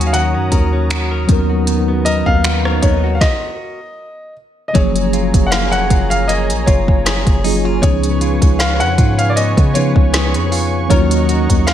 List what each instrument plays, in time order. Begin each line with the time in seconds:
Already playing: 808-style bass D#2, clean electric guitar D#3 C#4 F#4 A#4, tine electric piano F#3 C#4 D#4 F#4 A#4, analog synth pad F#4 C#5 A#5 D#6, swell
0.01 closed hi-hat
0.06 grand piano F5
0.13 clean electric guitar D#3, grand piano F#5, closed hi-hat
0.34 808-style bass F#2, clean electric guitar C#4
0.52 808-style bass D#2, clean electric guitar A#4, kick, closed hi-hat
0.73 clean electric guitar C#4
0.90 clean electric guitar F#4, finger snap, closed hi-hat
1.11 clean electric guitar A#4
1.27 808-style bass D#2, clean electric guitar D#3, tine electric piano F#3 B3 C#4 D#4, analog synth pad B3, kick, closed hi-hat
1.32 tine electric piano A#4
1.50 clean electric guitar F#4
1.67 clean electric guitar D#3, closed hi-hat
1.88 clean electric guitar B3
2.05 clean electric guitar A#4, grand piano D#5, closed hi-hat
2.26 808-style bass D#2, clean electric guitar B3, grand piano F5, kick
2.44 clean electric guitar F#4, finger snap, closed hi-hat
2.65 clean electric guitar A#4, cross-stick
2.82 808-style bass D#2, clean electric guitar B3, grand piano C#5, kick, closed hi-hat
3.04 clean electric guitar F#4
3.15 grand piano F5
3.21 grand piano D#5, kick, snare
4.68 grand piano D#5
4.73 808-style bass F#1, tine electric piano F3 F#3 A#3 C#4, clean electric guitar F#3 G#4, analog synth pad G#4 C#5 G#5 A#5, grand piano C#5, kick, closed hi-hat
4.78 tine electric piano G#4
4.96 closed hi-hat
5.13 clean electric guitar F4, closed hi-hat
5.34 808-style bass F#1, kick, closed hi-hat
5.46 grand piano F#5
5.51 clean electric guitar A#3, grand piano F5, snare, closed hi-hat
5.72 808-style bass F1, grand piano F#5, closed hi-hat
5.90 808-style bass F#1, clean electric guitar F4, kick, closed hi-hat
6.10 grand piano F5, closed hi-hat
6.28 clean electric guitar A#3, grand piano D#5, closed hi-hat
6.50 808-style bass A#1, closed hi-hat
6.66 808-style bass F#1, clean electric guitar F4, grand piano C#5, kick, closed hi-hat
6.88 kick
7.06 clean electric guitar G#4, snare, closed hi-hat
7.27 808-style bass F#1, kick, closed hi-hat
7.44 tine electric piano F#3 A#3 C#4 F4 G#4, clean electric guitar D#4, open hi-hat
7.65 clean electric guitar F4
7.81 808-style bass C#2, clean electric guitar C#3 G#4, tine electric piano D#3 B3 C#4 D#4, analog synth pad B4 C#5 G#5 C#6, grand piano C#5, kick, closed hi-hat
7.86 tine electric piano F3 G#4
8.03 closed hi-hat
8.21 clean electric guitar F4, closed hi-hat
8.42 808-style bass C#2, kick, closed hi-hat
8.59 clean electric guitar B3, grand piano F5, snare, closed hi-hat
8.80 808-style bass F2, grand piano F#5, closed hi-hat
8.98 808-style bass G#2, clean electric guitar F4, kick, closed hi-hat
9.18 grand piano F5, closed hi-hat
9.29 grand piano D5
9.36 clean electric guitar B3, grand piano D#5, closed hi-hat
9.57 808-style bass C#3, kick, closed hi-hat
9.74 tine electric piano F3 B3 C#4 D#4 B4, clean electric guitar F4, grand piano C#5, closed hi-hat
9.96 808-style bass C#2, kick
10.13 clean electric guitar G#4, snare, closed hi-hat
10.34 808-style bass F2, closed hi-hat
10.52 clean electric guitar F4, open hi-hat
10.88 808-style bass D#2, clean electric guitar D#3 A#4, tine electric piano F#3 A#3 C#4, grand piano C#5, analog synth pad D#5 F#5 A#5, kick, closed hi-hat
10.93 tine electric piano D#4 F4
11.00 tine electric piano F#4
11.11 closed hi-hat
11.29 clean electric guitar F#4, closed hi-hat
11.49 808-style bass D#2, kick, closed hi-hat
11.67 clean electric guitar C#4, grand piano F5, snare, closed hi-hat